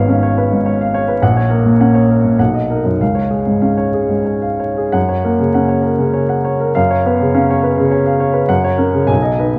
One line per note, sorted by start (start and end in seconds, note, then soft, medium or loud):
0.00 1.18 G#1 soft
0.00 0.17 G#2 soft
0.00 0.26 B3 soft
0.00 0.37 B4 soft
0.00 0.23 C#5 soft
0.00 0.09 F5 medium
0.08 0.54 C#4 soft
0.08 0.32 F5 soft
0.23 0.46 C#5 soft
0.37 0.60 B4 soft
0.52 0.74 G#2 soft
0.66 0.88 C#5 soft
0.81 1.03 F5 soft
0.94 1.17 C#5 soft
1.08 1.22 B4 soft
1.22 2.35 A#1 soft
1.22 1.45 F#5 medium
1.37 1.59 C#5 soft
1.50 1.97 A#3 soft
1.50 1.73 A#4 soft
1.64 1.88 A#2 soft
1.80 2.27 C#4 soft
1.80 2.04 F#5 soft
1.95 2.18 C#5 soft
2.10 2.33 A#4 soft
2.24 2.39 A#2 soft
2.39 2.99 B1 soft
2.39 2.63 F#5 soft
2.54 2.78 D#5 soft
2.70 2.98 D#4 soft
2.70 2.95 A#4 soft
2.84 3.00 F#2 soft
3.01 4.91 C#2 soft
3.01 3.26 F5 soft
3.15 3.41 C#5 soft
3.30 3.82 G#3 soft
3.30 3.57 G#4 soft
3.46 3.72 G#2 soft
3.62 4.13 C#4 soft
3.62 3.88 F5 soft
3.77 4.04 C#5 soft
3.93 4.20 G#4 soft
4.09 4.36 G#2 soft
4.25 4.53 C#5 soft
4.42 4.71 F5 soft
4.60 4.88 C#5 soft
4.77 4.94 G#4 soft
4.92 6.70 F#2 soft
4.92 5.19 F#5 soft
5.09 5.34 C#5 soft
5.24 5.72 A#3 soft
5.24 5.48 A#4 soft
5.40 5.63 C#3 soft
5.54 6.02 C#4 soft
5.54 5.78 F#5 soft
5.68 5.92 C#5 soft
5.82 6.07 A#4 soft
5.99 6.23 C#3 soft
6.13 6.38 C#5 soft
6.29 6.53 F#5 soft
6.44 6.69 C#5 soft
6.60 6.75 A#4 soft
6.75 8.46 F#2 soft
6.75 6.99 F5 medium
6.90 7.14 C#5 soft
7.06 7.53 B3 soft
7.06 7.30 B4 soft
7.21 7.44 C#3 soft
7.34 7.81 C#4 soft
7.34 7.58 F5 soft
7.50 7.73 C#5 soft
7.63 7.86 B4 soft
7.78 8.01 C#3 soft
7.91 8.14 C#5 soft
8.06 8.29 F5 soft
8.20 8.43 C#5 soft
8.33 8.49 B4 soft
8.48 9.07 F#2 medium
8.48 8.73 F#5 medium
8.64 8.88 C#5 soft
8.78 9.06 C#4 soft
8.78 9.03 A#4 soft
8.93 9.09 C#3 soft
9.07 9.59 B1 soft
9.07 9.33 G#5 medium
9.22 9.49 D#5 soft
9.39 9.59 D#4 soft
9.39 9.59 B4 soft
9.56 9.59 B2 soft